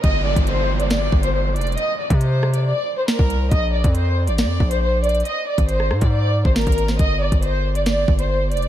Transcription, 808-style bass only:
\new Staff \with { instrumentName = "808-style bass" } { \clef bass \time 4/4 \key ees \lydian \tempo 4 = 138 g,,8. g,,4.~ g,,16 g,,4 f,,8 | r8. c4. r4 c,8. | bes,,8. f,4 a,,16. f,16. bes,,4. | r8. aes,,8. aes,16 aes,4 aes,,8 aes,,8. |
g,,8. g,,4.~ g,,16 g,,4 f,,8 | }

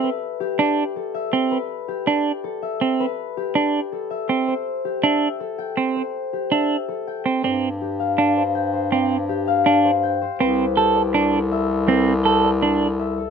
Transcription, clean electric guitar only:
\new Staff \with { instrumentName = "Clean electric guitar" } { \time 4/4 \key c \major \tempo 4 = 162 r4. d'8 r4. c'8 | r4. d'8 r4. c'8 | r4. d'8 r4. c'8 | r4. d'8 r4. c'8 |
r4. d'8 r4. c'8 | c'8 r4. d'8 r4. | c'8 r4. d'8 r4. | c'8 r8 a'8 r8 d'8 r4. |
c'8 r8 a'8 r8 d'8 r4. | }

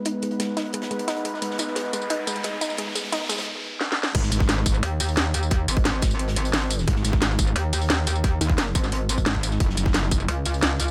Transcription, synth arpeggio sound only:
\new Staff \with { instrumentName = "Synth arpeggio sound" } { \clef bass \time 4/4 \key gis \minor \tempo 4 = 176 dis'8 gis8 gis8 dis'8 gis8 gis8 dis'8 gis8 | gis8 dis'8 gis8 gis8 dis'8 gis8 gis8 dis'8 | gis8 gis8 dis'8 gis8 r2 | r1 |
r1 | r1 | r1 | r1 | }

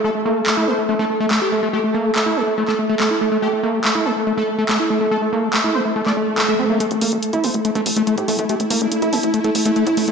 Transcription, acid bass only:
\new Staff \with { instrumentName = "Acid bass" } { \time 4/4 \key c \mixolydian \tempo 4 = 142 a16 r16 bes16 a16 r16 e'16 a16 r16 a16 a16 r16 a16 a16 r16 a16 a16 | a16 r16 bes16 a16 r16 e'16 a16 r16 a16 a16 r16 a16 a16 r16 a16 a16 | a16 r16 bes16 a16 r16 e'16 a16 r16 a16 a16 r16 a16 a16 r16 a16 a16 | a16 r16 bes16 a16 r16 e'16 a16 r16 a16 a16 a16 r16 a16 a16 c'16 bes16 |
a16 r16 bes16 a16 r16 e'16 a16 r16 a16 a16 r16 a16 a16 r16 a16 a16 | a16 r16 bes16 a16 r16 e'16 a16 r16 a16 a16 r16 a16 a16 r16 a16 a16 | }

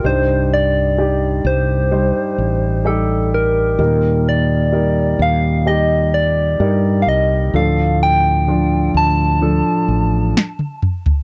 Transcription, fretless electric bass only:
\new Staff \with { instrumentName = "Fretless electric bass" } { \clef bass \time 4/4 \key c \dorian \tempo 4 = 64 c,4. c,8. r16 a,,4. | ees,4. ees,4. g,8 c,8 | d,4. d,8. r16 a,,8 r4 | }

